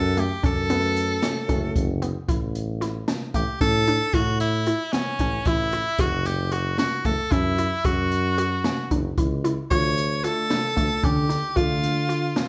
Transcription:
Already playing: F#2 C#4 A4
0.17 A3 G4, closed hi-hat
0.43 F#2 C#4 A4, kick, closed hi-hat
0.70 A3 B3 C#4 F#4 B4, closed hi-hat
0.96 closed hi-hat
1.23 C#4, snare, closed hi-hat
1.48 F#1 A3 C#4 F#4 A4, kick, closed hi-hat
1.75 F#1, kick, closed hi-hat
2.02 B3, closed hi-hat
2.28 A1 E4, kick, closed hi-hat
2.55 closed hi-hat
2.81 E4, snare, closed hi-hat
3.08 C#4, snare, closed hi-hat
3.34 A1 A3 G4, kick, closed hi-hat
3.60 A2 C#4 A4, kick, closed hi-hat
3.87 D4, closed hi-hat
4.13 A2 E4 F#4, kick, closed hi-hat
4.40 E4, closed hi-hat
4.66 E4, closed hi-hat
4.93 B3 C#4, snare, closed hi-hat
5.19 A1 C#4, kick, closed hi-hat
5.45 A1 E4, kick, closed hi-hat
5.72 E4, closed hi-hat
5.98 F#1 F#4, kick, closed hi-hat
6.25 G4, snare, closed hi-hat
6.52 F#4, closed hi-hat
6.78 C#4 F#4, snare, closed hi-hat
7.05 F#1 A3 A4, kick, closed hi-hat
7.31 F#2 C#4 E4, kick, snare, closed hi-hat
7.58 E4, closed hi-hat
7.84 F#2 F#4, kick, closed hi-hat
8.12 closed hi-hat
8.38 F#4, closed hi-hat
8.64 C#4, snare, closed hi-hat
8.91 F#1 D4, kick, closed hi-hat
9.17 C#2 E4, kick, closed hi-hat
9.44 E4, closed hi-hat
9.71 D2 F4 C#5, kick, closed hi-hat
9.98 closed hi-hat
10.24 A3 D4 F4 A4, closed hi-hat
10.50 D4, snare, closed hi-hat
10.77 D2 A3 D4 F4 A4, kick, snare, closed hi-hat
11.03 D3 C#4 G4, kick, closed hi-hat
11.29 D4, snare, closed hi-hat
11.56 D3 A3 D4 F4 A4, kick, closed hi-hat
11.83 snare, closed hi-hat
12.09 F4, closed hi-hat
12.36 C#4, snare, closed hi-hat

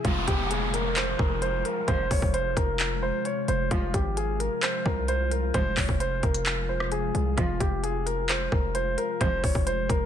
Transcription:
0.05 F1 C2 G#2 C3 F3 G#3 F4, kick, closed hi-hat, downlifter
0.28 F1 G4, kick, closed hi-hat
0.51 G#4, closed hi-hat
0.73 A#4, closed hi-hat
0.96 C5, clap, closed hi-hat
1.19 F1 A#4, kick
1.42 C5, closed hi-hat
1.65 A#4, closed hi-hat
1.88 F1 C2 G#2 F3 C5, kick, closed hi-hat
2.11 F1 C#5, kick, open hi-hat
2.22 F1, kick
2.34 C5, closed hi-hat
2.57 F1 A#4, kick, closed hi-hat
2.80 clap, closed hi-hat
3.03 C5
3.25 C#5, closed hi-hat
3.48 F1 C5, closed hi-hat
3.71 F1 C2 G#2 F3 F4, kick, closed hi-hat
3.94 G#1 G4, kick, closed hi-hat
4.17 G#4, closed hi-hat
4.40 A#4, closed hi-hat
4.63 C5, clap, closed hi-hat
4.86 C2 A#4, kick
5.08 C5, closed hi-hat
5.31 A#4, closed hi-hat
5.54 F1 C2 G#2 F3 C5, kick, closed hi-hat
5.77 F1 C#5, kick, clap, open hi-hat
5.89 F1, kick
6.00 C5, closed hi-hat
6.23 F1 A#4, kick, closed hi-hat
6.34 closed hi-hat
6.46 clap, closed hi-hat
6.69 C5
6.80 cross-stick
6.92 G#4, closed hi-hat
7.15 C2, closed hi-hat
7.37 F1 C2 G#2 F3 F4, kick, closed hi-hat
7.60 F1 G4, kick, closed hi-hat
7.83 G#4, closed hi-hat
8.06 A#4, closed hi-hat
8.29 C5, clap, closed hi-hat
8.52 F1 A#4, kick
8.75 C5, closed hi-hat
8.98 A#4, closed hi-hat
9.21 F1 C2 G#2 F3 G4 C5, kick, closed hi-hat
9.44 F1 C#5, kick, open hi-hat
9.55 F1, kick
9.66 C5, closed hi-hat
9.89 F1 A#4, kick, closed hi-hat

